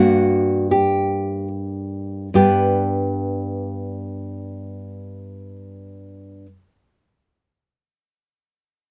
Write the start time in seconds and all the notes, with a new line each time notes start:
Already playing: G2 A#3 D4 F#4
0.71 G4
2.34 G2 B3 D4 G4 B4